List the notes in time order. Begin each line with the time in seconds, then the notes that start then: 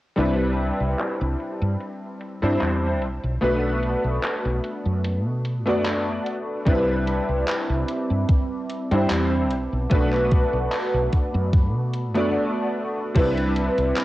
0.16 C2 G3 C4 D4 E4 B4, closed hi-hat
0.59 closed hi-hat
0.80 C2
0.99 clap, closed hi-hat
1.21 C2
1.40 closed hi-hat
1.61 G2
1.80 closed hi-hat
2.21 closed hi-hat
2.42 G2 G3 C4 D4 E4 C5, closed hi-hat
2.61 E2, clap, closed hi-hat
3.01 B1, closed hi-hat
3.24 B1
3.41 B1 A3 B3 D4 F#4 B4, closed hi-hat
3.83 closed hi-hat
4.04 B1
4.24 clap, closed hi-hat
4.45 B1
4.64 closed hi-hat
4.85 F#2
5.04 closed hi-hat
5.26 B2
5.45 closed hi-hat
5.66 F#2 A3 B3 D4 F#4 D5, closed hi-hat
5.86 clap, closed hi-hat
6.26 closed hi-hat
6.65 C2 G3 C4 D4 E4 B4 E5 B5 D6, kick, closed hi-hat
7.07 closed hi-hat
7.29 C2
7.48 clap, closed hi-hat
7.70 C2
7.88 closed hi-hat
8.10 G2
8.29 kick, closed hi-hat
8.69 closed hi-hat
8.91 G2 G3 C4 D4 E4 C5, closed hi-hat
9.10 E2, clap, closed hi-hat
9.50 B1 B4 F#5 A5 D6, closed hi-hat
9.72 B1
9.89 B1 A3 B3 D4 F#4 B4, kick, closed hi-hat
10.13 clap
10.31 kick, closed hi-hat
10.53 B1
10.72 clap, closed hi-hat
10.94 B1
11.12 B5, kick, closed hi-hat
11.34 F#2
11.53 kick, closed hi-hat
11.75 B2
11.94 closed hi-hat
12.15 F#2 A3 B3 D4 F#4 D5, closed hi-hat
13.14 C2 G3 C4 D4 E4 B4 E5 B5 D6, kick, closed hi-hat, crash
13.37 closed hi-hat
13.56 closed hi-hat
13.78 C2, closed hi-hat
13.96 clap, closed hi-hat